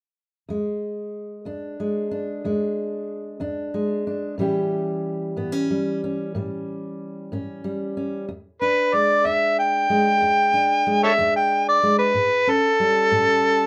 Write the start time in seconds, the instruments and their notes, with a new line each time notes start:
0.49 steel-string acoustic guitar E2 G#3
1.45 steel-string acoustic guitar E2 D4
1.80 steel-string acoustic guitar G#3
2.11 steel-string acoustic guitar D4
2.44 steel-string acoustic guitar E2 G#3
3.40 steel-string acoustic guitar E2 D4
3.74 steel-string acoustic guitar G#3
4.07 steel-string acoustic guitar D4
4.38 steel-string acoustic guitar A2 E3 G3 C#4 G4
5.36 steel-string acoustic guitar A2 B3
5.52 steel-string acoustic guitar C#4
5.70 steel-string acoustic guitar G3
6.04 steel-string acoustic guitar C#4
6.35 steel-string acoustic guitar A2 G3
7.32 steel-string acoustic guitar A2 C#4
7.64 steel-string acoustic guitar G3
7.97 steel-string acoustic guitar C#4
8.29 steel-string acoustic guitar E2
8.61 steel-string acoustic guitar D4, harmonica B4
8.93 steel-string acoustic guitar G#3, harmonica D5
9.25 steel-string acoustic guitar E2 D4, harmonica E5
9.59 harmonica G5
9.90 steel-string acoustic guitar G#3
10.21 steel-string acoustic guitar E2
10.54 steel-string acoustic guitar D4
10.87 steel-string acoustic guitar G#3
11.03 harmonica A4 C#5 E5
11.18 steel-string acoustic guitar E2 D4
11.36 harmonica G5
11.69 harmonica D5
11.83 steel-string acoustic guitar G#3
11.99 harmonica B4
12.14 steel-string acoustic guitar A2
12.47 steel-string acoustic guitar C#4, harmonica A4
12.80 steel-string acoustic guitar G3
13.11 steel-string acoustic guitar A2 C#4